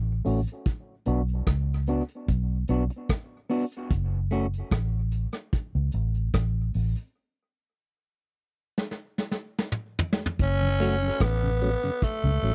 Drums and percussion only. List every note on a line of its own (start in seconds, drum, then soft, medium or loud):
0.25 open hi-hat medium
0.47 closed hi-hat medium
0.66 kick loud
0.66 closed hi-hat medium
1.06 closed hi-hat medium
1.28 closed hi-hat soft
1.47 kick medium
1.47 cross-stick loud
1.47 closed hi-hat medium
1.87 closed hi-hat medium
2.08 closed hi-hat medium
2.28 kick medium
2.28 closed hi-hat medium
2.68 closed hi-hat medium
2.90 closed hi-hat soft
3.09 kick loud
3.09 cross-stick loud
3.09 closed hi-hat medium
3.50 open hi-hat medium
3.72 closed hi-hat medium
3.91 kick loud
3.91 closed hi-hat loud
4.31 closed hi-hat medium
4.53 closed hi-hat medium
4.71 kick loud
4.71 cross-stick loud
4.71 closed hi-hat medium
5.11 closed hi-hat medium
5.32 cross-stick medium
5.32 closed hi-hat medium
5.53 kick loud
5.53 closed hi-hat medium
5.92 closed hi-hat medium
6.14 closed hi-hat soft
6.34 kick loud
6.34 cross-stick loud
6.34 closed hi-hat medium
6.74 open hi-hat medium
6.96 closed hi-hat medium
8.78 snare soft
8.91 snare soft
9.18 snare medium
9.31 snare medium
9.59 snare medium
9.72 mid tom medium
9.99 floor tom medium
10.13 snare loud
10.26 floor tom medium
10.39 kick loud
10.39 closed hi-hat loud
10.80 closed hi-hat medium
11.02 closed hi-hat medium
11.20 kick loud
11.20 cross-stick loud
11.20 closed hi-hat loud
11.61 closed hi-hat medium
11.82 closed hi-hat medium
12.02 kick medium
12.02 closed hi-hat medium
12.41 closed hi-hat medium